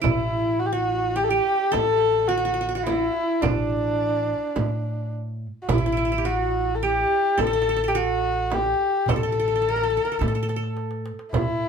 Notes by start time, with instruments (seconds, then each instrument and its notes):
Already playing: qanun A4
0.02 upright bass A1, qanun E4, kamancheh E4, frame drum, darbuka dum
0.59 kamancheh F#4
0.66 kamancheh G4
0.73 qanun F#4, kamancheh F#4
1.16 qanun G4, kamancheh G4
1.24 kamancheh A4
1.29 kamancheh G4, qanun G4
1.72 upright bass A1, qanun A4, kamancheh A4, darbuka tek, frame drum
2.28 kamancheh F#4, qanun F#4
2.38 qanun F#4
2.45 qanun F#4
2.54 qanun F#4
2.61 qanun F#4
2.69 qanun F#4
2.75 qanun F#4, kamancheh F#4
2.84 kamancheh E4, qanun E4, darbuka tek, frame drum
3.41 upright bass A1, kamancheh D4, qanun D4, frame drum, darbuka dum
4.56 upright bass A2, darbuka tek, frame drum
5.62 kamancheh F#4
5.68 upright bass A1, kamancheh E4, qanun E4, frame drum, darbuka dum
5.78 qanun E4
5.86 qanun E4
5.92 qanun E4
5.97 qanun E4
6.05 qanun E4
6.12 qanun E4
6.18 qanun G4
6.25 qanun F#4, kamancheh F#4, darbuka ka
6.75 kamancheh A4
6.83 qanun G4, kamancheh G4
7.38 upright bass A1, qanun A4, kamancheh A4, darbuka tek, frame drum
7.47 qanun A4
7.53 qanun A4
7.62 qanun A4
7.69 qanun A4
7.76 qanun A4
7.84 qanun A4
7.88 kamancheh G4, qanun G4
7.95 qanun F#4, kamancheh F#4
8.50 kamancheh G4, darbuka tek, frame drum
9.06 upright bass A1, qanun A4, kamancheh A4, darbuka dum, frame drum
9.16 qanun A4
9.23 qanun A4
9.32 qanun A4
9.40 qanun A4
9.48 qanun A4
9.56 qanun A4
9.62 qanun A4
9.69 qanun A4, kamancheh A#4
9.76 qanun A4
9.83 qanun A4, kamancheh A4
9.90 qanun A4
9.97 qanun A4
10.04 qanun A4, kamancheh A#4
10.12 qanun A4
10.19 upright bass A2, kamancheh A4, qanun A4, darbuka tek, frame drum
10.28 qanun A4
10.35 qanun A4, darbuka ka
10.43 qanun A4
10.49 qanun A4, darbuka tek
10.56 qanun A4
10.63 darbuka ka
10.77 darbuka tek
10.91 darbuka ka
11.06 darbuka tek
11.19 darbuka ka
11.33 upright bass A2, kamancheh E4, darbuka dum, frame drum